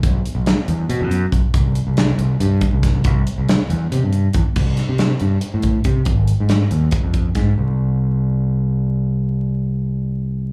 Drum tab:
CC |-------|-------|-------|x------|
HH |xxxxxxx|xxxxxxx|xxxxxxx|-xxxxxx|
SD |--o----|--o---o|--o----|-oo----|
BD |o-----o|o----oo|o-----o|o----oo|

CC |-------|-------|-------|
HH |xxxxxxx|-------|-------|
SD |--o---o|-------|-------|
BD |o---ooo|-------|-------|